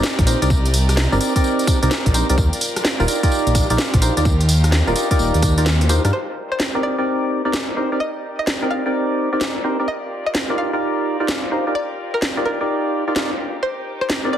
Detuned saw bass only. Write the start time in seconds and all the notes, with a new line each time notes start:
0.19 A#1
0.42 C2
1.12 G1
1.83 C2
2.06 A#1
2.30 C2
2.38 D#2
3.00 D#1
3.47 A#1
3.70 A#1
3.94 A#1
4.17 D#2
4.87 D#1
5.19 D#1
5.34 D#2
6.05 G2